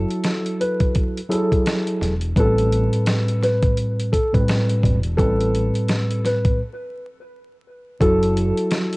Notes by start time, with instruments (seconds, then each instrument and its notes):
Already playing: tine electric piano F#3 E4 F#4 A4, upright piano A4
0.11 closed hi-hat
0.24 snare, closed hi-hat
0.46 closed hi-hat
0.60 upright piano B4, closed hi-hat
0.80 kick, closed hi-hat
0.95 kick, closed hi-hat
1.17 closed hi-hat
1.29 tine electric piano F#3 E4 G#4 A4, upright piano A4, closed hi-hat
1.52 kick, closed hi-hat
1.66 snare, closed hi-hat
1.87 closed hi-hat
2.01 fingered electric bass E1, snare, closed hi-hat
2.21 closed hi-hat
2.36 fingered electric bass A1, tine electric piano A2 G3 C4 B4, upright piano A4, kick, closed hi-hat
2.58 closed hi-hat
2.72 closed hi-hat
2.93 closed hi-hat
3.06 snare, closed hi-hat
3.28 closed hi-hat
3.43 upright piano B4, snare, closed hi-hat
3.63 kick, closed hi-hat
3.77 closed hi-hat
4.00 closed hi-hat
4.12 upright piano A4, kick, closed hi-hat
4.33 tine electric piano A2 G3 C4 B4, kick, closed hi-hat
4.48 snare, closed hi-hat
4.69 closed hi-hat
4.83 fingered electric bass E1, kick, closed hi-hat
5.03 closed hi-hat
5.17 fingered electric bass A1, tine electric piano A2 G3 C4 B4, upright piano A4, kick, closed hi-hat
5.41 closed hi-hat
5.55 closed hi-hat
5.75 closed hi-hat
5.88 snare, closed hi-hat
6.11 closed hi-hat
6.25 upright piano B4, snare, closed hi-hat
6.45 kick, closed hi-hat
8.00 fingered electric bass F#1, tine electric piano F#3 E4 F#4 A4, upright piano A4, kick, closed hi-hat
8.23 closed hi-hat
8.37 closed hi-hat
8.57 closed hi-hat
8.71 snare, closed hi-hat
8.93 closed hi-hat